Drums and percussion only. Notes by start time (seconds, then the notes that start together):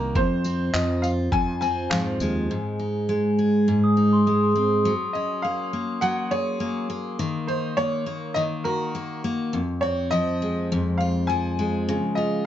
0.15 kick
0.44 tambourine
0.74 clap
1.03 tambourine
1.32 kick
1.62 tambourine
1.91 clap
2.20 tambourine